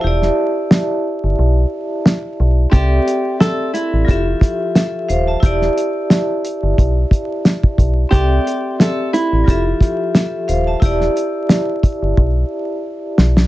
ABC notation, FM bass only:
X:1
M:4/4
L:1/16
Q:"Swing 16ths" 1/4=89
K:Ephr
V:1 name="FM bass" clef=bass
E,,,2 z4 z G,,, B,,,2 z4 B,,,2 | C,,2 z4 z A,,, F,,,2 z4 ^D,,,2 | E,,,2 z4 z G,,, B,,,2 z4 B,,,2 | C,,2 z4 z A,,, F,,,2 z4 ^D,,,2 |
E,,,2 z4 z G,,, B,,,2 z4 B,,,2 |]